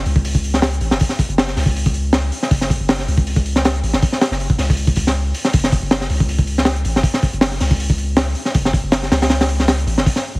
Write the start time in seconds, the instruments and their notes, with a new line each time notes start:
0.06 808-style bass C#2, open hi-hat
0.16 kick
0.25 open hi-hat
0.35 kick
0.44 open hi-hat
0.54 snare
0.62 snare, open hi-hat
0.73 closed hi-hat
0.81 808-style bass A1, open hi-hat
0.91 808-style bass F#1, snare
1.00 kick, open hi-hat
1.09 snare
1.19 kick, open hi-hat
1.29 808-style bass F#1, closed hi-hat
1.38 snare, open hi-hat
1.48 snare
1.57 808-style bass C#2, snare, open hi-hat
1.66 kick
1.76 open hi-hat
1.86 kick
1.94 open hi-hat
2.13 snare, open hi-hat
2.32 open hi-hat
2.43 snare
2.51 808-style bass F#1, kick, open hi-hat
2.61 snare
2.70 kick, open hi-hat
2.80 808-style bass F#1
2.89 snare, open hi-hat
2.99 snare
3.08 808-style bass C#2, open hi-hat
3.18 kick
3.27 open hi-hat
3.36 kick
3.46 open hi-hat
3.56 snare
3.65 snare, open hi-hat
3.75 closed hi-hat
3.83 808-style bass A1, open hi-hat
3.93 808-style bass F#1, snare
4.02 kick, open hi-hat
4.12 snare
4.21 snare, open hi-hat
4.31 808-style bass F#1, snare
4.40 open hi-hat
4.50 kick
4.58 808-style bass C#2, snare, open hi-hat
4.70 kick
4.77 open hi-hat
4.87 kick
4.96 kick, open hi-hat
5.07 snare
5.34 open hi-hat
5.45 snare
5.53 808-style bass F#1, kick, open hi-hat
5.64 snare
5.72 kick, open hi-hat
5.82 808-style bass F#1
5.91 snare, open hi-hat
6.01 snare
6.10 808-style bass C#2, open hi-hat
6.20 kick
6.29 open hi-hat
6.39 kick
6.47 open hi-hat
6.58 snare
6.65 snare, open hi-hat
6.76 closed hi-hat
6.85 808-style bass A1, open hi-hat
6.96 808-style bass F#1, snare
7.03 kick, open hi-hat
7.14 snare
7.22 kick, open hi-hat
7.33 808-style bass F#1, closed hi-hat
7.41 snare, open hi-hat
7.51 snare
7.60 808-style bass C#2, snare, open hi-hat
7.71 kick
7.80 open hi-hat
7.90 kick
7.98 open hi-hat
8.16 snare, open hi-hat
8.35 open hi-hat
8.45 snare
8.54 808-style bass F#1, kick, open hi-hat
8.65 snare
8.73 kick, open hi-hat
8.84 808-style bass F#1
8.92 snare, open hi-hat
9.03 snare
9.12 808-style bass C#2, snare, open hi-hat
9.22 snare, open hi-hat
9.30 snare, open hi-hat
9.40 snare, open hi-hat
9.49 open hi-hat
9.60 snare
9.68 snare, open hi-hat
9.79 closed hi-hat
9.87 808-style bass A1, open hi-hat
9.98 808-style bass F#1, snare
10.06 kick, open hi-hat
10.16 snare
10.35 808-style bass F#1